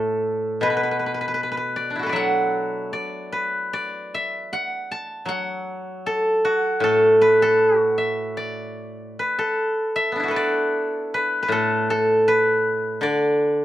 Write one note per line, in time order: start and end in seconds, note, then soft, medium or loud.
0.00 0.62 A2 soft
0.00 1.69 A4 medium
0.00 0.97 D5 medium
0.00 0.44 E5 medium
0.00 0.26 F#5 soft
0.61 2.90 B2 soft
0.61 0.70 B4 medium
0.70 0.76 B4 soft
0.77 0.83 B4 medium
0.83 0.91 B4 soft
0.91 0.99 B4 soft
0.99 1.06 B4 soft
1.06 1.14 B4 soft
1.14 1.20 B4 soft
1.21 1.27 B4 soft
1.28 1.34 B4 soft
1.34 1.43 B4 soft
1.43 1.51 B4 soft
1.52 1.57 B4 soft
1.57 2.06 B4 soft
1.76 2.09 D5 medium
1.90 4.70 D4 soft
1.96 4.56 E4 soft
1.96 4.42 F#4 soft
2.03 4.22 A4 soft
2.03 3.32 B4 soft
2.09 4.51 F#3 soft
2.09 2.92 D5 soft
2.09 3.84 E5 soft
2.16 3.76 F#5 medium
2.93 3.73 D5 medium
3.32 5.37 B4 medium
3.73 5.58 D5 medium
4.14 5.86 E5 medium
4.53 5.28 F#5 medium
4.91 6.36 A5 medium
5.26 7.58 F#3 soft
5.26 6.89 F#5 medium
6.06 6.83 A4 medium
6.45 7.78 F#4 medium
6.80 9.14 A2 medium
6.80 7.42 A4 medium
7.21 9.19 B4 medium
7.42 7.78 A4 medium
7.78 9.38 F#4 medium
7.98 9.70 E5 medium
8.37 10.22 D5 medium
9.19 10.30 B4 medium
9.39 10.28 A4 medium
9.96 11.68 E5 medium
10.12 13.22 B3 soft
10.12 12.96 D4 soft
10.20 12.81 E4 soft
10.20 12.66 F#4 soft
10.28 11.52 A4 soft
10.28 11.14 B4 soft
10.36 12.21 D5 medium
11.14 11.42 B4 medium
11.43 12.27 B4 medium
11.48 13.01 A2 soft
11.48 11.90 A4 medium
11.90 13.65 A4 medium
12.28 13.65 B4 medium
13.01 13.65 D3 medium
13.01 13.65 D5 medium